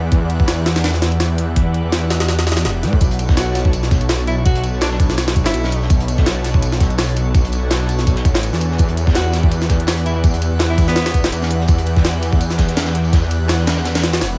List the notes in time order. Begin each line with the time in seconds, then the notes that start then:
Already playing: E2
0.11 E2 E4 G4 B4 D5 F#5, kick, closed hi-hat
0.30 closed hi-hat
0.40 kick
0.48 snare, closed hi-hat
0.66 snare, closed hi-hat
0.76 snare, closed hi-hat
0.84 snare, closed hi-hat
0.94 snare
1.02 snare, closed hi-hat
1.12 closed hi-hat
1.20 snare, closed hi-hat
1.38 closed hi-hat
1.56 E4 G4 B4 D5 F#5, kick, closed hi-hat
1.74 closed hi-hat
1.84 E2
1.92 snare, closed hi-hat
2.10 snare, closed hi-hat
2.20 snare, closed hi-hat
2.28 snare, closed hi-hat
2.39 snare, closed hi-hat
2.47 snare, closed hi-hat
2.52 snare, closed hi-hat
2.57 snare, closed hi-hat
2.65 E1, snare, closed hi-hat
2.83 A2, snare, closed hi-hat
2.93 kick
3.00 B1 B3 D4 F#4 A4 C#5, kick, closed hi-hat, tambourine
3.11 closed hi-hat
3.19 closed hi-hat, tambourine
3.29 kick, snare
3.37 F#4, snare, closed hi-hat, tambourine
3.55 snare, closed hi-hat, tambourine
3.65 kick
3.73 closed hi-hat, tambourine
3.83 snare
3.91 kick, snare, closed hi-hat, tambourine
4.01 closed hi-hat
4.09 snare, open hi-hat, tambourine
4.18 closed hi-hat
4.27 E4, closed hi-hat, tambourine
4.37 E4
4.45 B3 D4 F#4 A4 C#5, kick, closed hi-hat, tambourine
4.55 closed hi-hat
4.64 closed hi-hat, tambourine
4.73 B1
4.81 D4, snare, closed hi-hat, tambourine
4.91 D4, snare
5.00 kick, closed hi-hat, tambourine
5.10 snare
5.17 snare, closed hi-hat, tambourine
5.28 snare, closed hi-hat
5.36 kick, closed hi-hat, tambourine
5.44 F#1 E4, snare
5.54 B1, closed hi-hat, tambourine
5.64 snare
5.71 closed hi-hat, tambourine
5.82 snare
5.90 B1 B3 D4 F#4 A4 C#5, kick, closed hi-hat, tambourine
6.00 closed hi-hat
6.08 closed hi-hat, tambourine
6.17 kick, snare
6.26 snare, closed hi-hat, tambourine
6.44 snare, closed hi-hat, tambourine
6.54 kick
6.62 closed hi-hat, tambourine
6.72 snare
6.80 kick, snare, closed hi-hat, tambourine
6.90 closed hi-hat
6.98 snare, open hi-hat, tambourine
7.08 closed hi-hat
7.16 closed hi-hat, tambourine
7.34 B3 D4 F#4 A4 C#5, kick, closed hi-hat, tambourine
7.45 closed hi-hat
7.52 closed hi-hat, tambourine
7.62 B1
7.70 snare, closed hi-hat, tambourine
7.81 snare
7.88 closed hi-hat, tambourine
7.99 snare
8.07 kick, closed hi-hat, tambourine
8.16 snare, closed hi-hat
8.25 kick, closed hi-hat, tambourine
8.34 A1, snare
8.43 closed hi-hat, tambourine
8.53 E2, snare
8.60 closed hi-hat, tambourine
8.71 snare
8.78 E2 E4 G4 B4 D5 F#5, kick, closed hi-hat, tambourine
8.89 closed hi-hat
8.97 closed hi-hat, tambourine
9.07 kick, snare
9.15 F#4, snare, closed hi-hat, tambourine
9.32 snare, closed hi-hat, tambourine
9.43 kick
9.51 closed hi-hat, tambourine
9.62 snare
9.69 kick, snare, closed hi-hat, tambourine
9.80 closed hi-hat
9.87 snare, open hi-hat, tambourine
9.97 closed hi-hat
10.06 E4, closed hi-hat, tambourine
10.16 E4
10.24 E4 G4 B4 D5 F#5, kick, closed hi-hat, tambourine
10.34 closed hi-hat
10.42 closed hi-hat, tambourine
10.52 E2
10.59 snare, closed hi-hat, tambourine
10.70 E4, snare
10.78 kick, closed hi-hat, tambourine
10.88 B3, snare
10.96 snare, closed hi-hat, tambourine
11.06 snare, closed hi-hat
11.14 kick, closed hi-hat, tambourine
11.24 E1, snare
11.32 E2, closed hi-hat, tambourine
11.42 snare
11.49 closed hi-hat, tambourine
11.60 snare
11.68 E2 E4 G4 B4 D5 F#5, kick, closed hi-hat, tambourine
11.78 closed hi-hat
11.86 closed hi-hat, tambourine
11.96 kick, snare
12.05 snare, closed hi-hat, tambourine
12.23 closed hi-hat, tambourine
12.33 kick
12.41 closed hi-hat, tambourine
12.50 snare
12.58 kick, snare, closed hi-hat, tambourine
12.69 snare, closed hi-hat
12.76 snare, open hi-hat, tambourine
12.86 snare, tambourine
12.95 snare, closed hi-hat
13.04 tambourine
13.13 E4 G4 B4 D5 F#5, kick, snare, closed hi-hat, tambourine
13.22 snare
13.31 closed hi-hat, tambourine
13.41 E2
13.48 snare, closed hi-hat, tambourine
13.58 snare
13.67 snare, closed hi-hat, tambourine
13.77 snare, tambourine
13.85 snare, closed hi-hat, tambourine
13.95 snare, closed hi-hat, tambourine
14.03 snare, closed hi-hat, tambourine
14.13 snare, closed hi-hat, tambourine
14.21 E1, snare, open hi-hat, tambourine